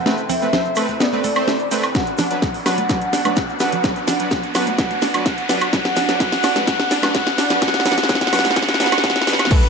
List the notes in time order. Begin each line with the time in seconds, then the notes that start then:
Already playing: C4 E4 A4 C5 E5 F#5, riser
0.06 A3 C4 B4, snare, shaker
0.18 shaker
0.29 C4 E5, open hi-hat, low conga, shaker
0.42 A3 C4 B4, shaker
0.53 C5, snare, low conga, shaker
0.65 shaker
0.76 A3 C4 A4 B4, open hi-hat, high woodblock, shaker
0.88 high conga, shaker
1.00 B3 D5, snare, shaker
1.13 A3 C4 B4, high conga, shaker
1.24 A4, open hi-hat, high conga, shaker
1.35 A3 C4 C5, high woodblock, shaker
1.48 A3, snare, shaker
1.59 shaker
1.71 A3 C4 B4, open hi-hat, shaker
1.83 high woodblock, shaker
1.95 F#3 B3 D4 F#4 B4 D5 F#5, kick, snare, closed hi-hat, shaker
2.07 closed hi-hat, shaker
2.18 D4, snare, open hi-hat, low conga, shaker
2.31 F#3 D4 B4, closed hi-hat, shaker
2.42 F#5, kick, snare, closed hi-hat, low conga, shaker
2.54 open hi-hat, shaker
2.66 F#3 D4 B4 F#5, snare, open hi-hat, high woodblock, shaker
2.78 closed hi-hat, high conga, shaker
2.89 F#3 D4 B4 F#5, kick, snare, closed hi-hat, shaker
3.01 closed hi-hat, shaker
3.13 D4, snare, open hi-hat, shaker
3.25 F#3 D4 B4, closed hi-hat, high conga, high woodblock, shaker
3.36 F#5, kick, snare, closed hi-hat, shaker
3.49 shaker
3.60 F#3 D4 B4 F#5, snare, open hi-hat, shaker
3.72 closed hi-hat, low conga, shaker
3.84 F#3 D4 B4 F#5, kick, snare, closed hi-hat, shaker
3.96 closed hi-hat, shaker
4.08 D4, snare, open hi-hat, low conga, shaker
4.20 F#3 D4 B4, closed hi-hat, shaker
4.31 F#5, kick, snare, closed hi-hat, low conga, shaker
4.43 closed hi-hat, shaker
4.55 F#3 D4 B4 F#5, snare, open hi-hat, high woodblock, shaker
4.67 closed hi-hat, high conga, shaker
4.78 F#3 D4 B4 F#5, kick, snare, closed hi-hat, shaker
4.91 closed hi-hat, high conga, shaker
5.02 D4, snare, open hi-hat, high conga, shaker
5.14 F#3 D4 B4, closed hi-hat, high woodblock, shaker
5.26 F#5, kick, snare, closed hi-hat, shaker
5.38 closed hi-hat, shaker
5.49 F#3 D4 B4 F#5, snare, open hi-hat, shaker
5.61 closed hi-hat, high woodblock, shaker
5.73 F#3 D4 B4 F#5, kick, snare, closed hi-hat, shaker
5.85 snare, closed hi-hat, shaker
5.96 D4, snare, open hi-hat, low conga, shaker
6.09 F#3 D4 B4, snare, closed hi-hat, shaker
6.20 F#3 D4 B4 F#5, kick, snare, closed hi-hat, low conga, shaker
6.32 snare, open hi-hat, shaker
6.43 D4, snare, open hi-hat, high woodblock, shaker
6.56 F#3 D4 B4, snare, closed hi-hat, high conga, shaker
6.67 F#3 D4 B4 F#5, kick, snare, closed hi-hat, shaker
6.80 snare, closed hi-hat, shaker
6.91 D4, snare, open hi-hat, shaker
7.02 F#3 D4 B4, snare, closed hi-hat, high conga, high woodblock, shaker
7.15 F#3 D4 B4 F#5, kick, snare, closed hi-hat, shaker
7.27 snare, shaker
7.38 D4, snare, open hi-hat, shaker
7.50 F#3 D4 B4, snare, closed hi-hat, low conga, shaker
7.62 F#3 D4 B4 F#5, kick, snare, closed hi-hat, shaker
7.68 snare
7.74 snare, closed hi-hat, shaker
7.80 snare
7.85 F#3 D4 B4 F#5, snare, open hi-hat, low conga, shaker
7.92 snare
7.98 snare, closed hi-hat, shaker
8.03 snare
8.09 F#3 D4 B4 F#5, kick, snare, closed hi-hat, low conga, shaker
8.15 snare
8.21 kick, snare, closed hi-hat, shaker
8.27 snare
8.33 F#3 D4 B4 F#5, snare, open hi-hat, high woodblock, shaker
8.39 snare
8.45 snare, open hi-hat, high conga, shaker
8.51 snare
8.56 F#3 D4 B4 F#5, kick, snare, closed hi-hat, shaker
8.62 snare
8.67 snare, closed hi-hat, high conga, shaker
8.74 snare
8.80 F#3 D4 B4 F#5, snare, open hi-hat, high conga, shaker
8.86 snare
8.92 snare, closed hi-hat, high woodblock, shaker
8.98 snare
9.04 F#3 D4 B4 F#5, kick, snare, closed hi-hat, shaker
9.10 snare
9.16 snare, closed hi-hat, shaker
9.21 snare
9.27 F#3 D4 B4 F#5, snare, open hi-hat, shaker
9.33 snare
9.39 snare, closed hi-hat, high woodblock, shaker
9.45 snare
9.51 A3 C4 E4 A4 B4 B5, kick, closed hi-hat, crash, tambourine, impact
9.63 closed hi-hat